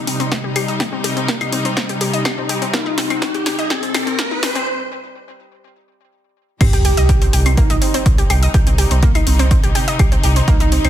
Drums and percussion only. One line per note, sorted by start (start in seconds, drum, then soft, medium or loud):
0.07 open hi-hat loud
0.20 closed hi-hat soft
0.32 kick loud
0.32 snare medium
0.32 closed hi-hat soft
0.56 open hi-hat loud
0.56 claves medium
0.68 closed hi-hat soft
0.80 kick loud
0.80 snare medium
0.80 closed hi-hat soft
1.04 open hi-hat loud
1.17 closed hi-hat soft
1.28 kick loud
1.28 snare medium
1.28 closed hi-hat soft
1.41 closed hi-hat soft
1.41 claves soft
1.53 open hi-hat loud
1.65 closed hi-hat soft
1.77 kick loud
1.77 snare medium
1.77 closed hi-hat soft
1.89 closed hi-hat soft
2.01 open hi-hat loud
2.13 closed hi-hat soft
2.25 kick loud
2.25 snare medium
2.25 closed hi-hat soft
2.25 claves medium
2.49 open hi-hat loud
2.62 closed hi-hat soft
2.74 kick loud
2.74 snare medium
2.74 closed hi-hat soft
2.98 snare medium
2.98 open hi-hat loud
3.10 closed hi-hat soft
3.10 claves soft
3.22 kick loud
3.22 snare medium
3.22 closed hi-hat soft
3.34 closed hi-hat soft
3.46 snare medium
3.46 open hi-hat loud
3.59 closed hi-hat soft
3.70 kick loud
3.70 snare medium
3.70 closed hi-hat soft
3.83 closed hi-hat soft
3.94 snare medium
3.94 open hi-hat loud
3.94 claves soft
4.07 closed hi-hat soft
4.19 kick loud
4.19 snare medium
4.19 closed hi-hat soft
4.43 snare medium
4.43 open hi-hat loud
4.55 closed hi-hat soft
6.61 kick loud
6.61 closed hi-hat medium
6.61 crash loud
6.61 claves medium
6.73 closed hi-hat medium
6.85 open hi-hat loud
6.97 closed hi-hat medium
7.09 kick loud
7.09 closed hi-hat medium
7.22 closed hi-hat medium
7.33 open hi-hat loud
7.46 closed hi-hat medium
7.46 claves medium
7.57 kick loud
7.57 closed hi-hat medium
7.70 closed hi-hat medium
7.82 open hi-hat loud
7.94 closed hi-hat medium
8.06 kick loud
8.06 closed hi-hat medium
8.18 closed hi-hat medium
8.30 open hi-hat loud
8.30 claves medium
8.43 closed hi-hat medium
8.54 kick loud
8.54 closed hi-hat medium
8.67 closed hi-hat medium
8.78 open hi-hat loud
8.91 closed hi-hat medium
9.03 kick loud
9.03 closed hi-hat medium
9.15 closed hi-hat medium
9.15 claves medium
9.27 open hi-hat loud
9.39 closed hi-hat medium
9.51 kick loud
9.51 closed hi-hat medium
9.64 closed hi-hat medium
9.75 open hi-hat loud
9.88 closed hi-hat medium
9.99 kick loud
9.99 closed hi-hat medium
9.99 claves medium
10.12 closed hi-hat medium
10.24 open hi-hat loud
10.36 closed hi-hat medium
10.48 kick loud
10.48 closed hi-hat medium
10.60 closed hi-hat medium
10.72 open hi-hat loud
10.85 closed hi-hat medium
10.85 claves soft